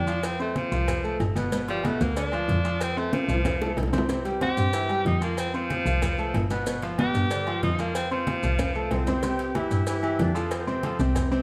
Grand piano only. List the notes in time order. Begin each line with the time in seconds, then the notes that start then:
0.07 F3 F4 F5
0.40 C4 C5 C6
0.72 F3 F4 F5
1.04 A3 A4 A5
1.35 B2 B3 B4
1.52 B2 B3 B4
1.68 F3 F4 F5
1.85 B2 B3 B4
2.16 D3 D4 D5
2.33 F3 F4 F5
2.65 F3 F4 F5
2.97 C4 C5 C6
3.28 F3 F4 F5
3.61 A3 A4 A5
3.93 C3 C4 C5
4.09 C3 C4 C5
4.25 G3 G4 G5
4.41 C3 C4 C5
4.73 E3 E4 E5
4.89 G3 G4 G5
5.21 F3 F4 F5
5.54 C4 C5 C6
5.86 F3 F4 F5
6.18 A3 A4 A5
6.50 B2 B3 B4
6.67 B2 B3 B4
6.83 F3 F4 F5
6.99 B2 B3 B4
7.31 D3 D4 D5
7.47 F3 F4 F5
7.79 F3 F4 F5
8.11 C4 C5 C6
8.43 F3 F4 F5
8.75 A3 A4 A5
9.08 C3 C4 C5
9.23 C3 C4 C5
9.55 E3 E4 G4
9.87 E3 E4 G4
10.03 E3 E4 G4
10.35 F3 F4 A4
10.67 C3 C4 C5
10.84 F3 F4 A4
10.99 C3 C4 C5
11.31 C3 C4 C5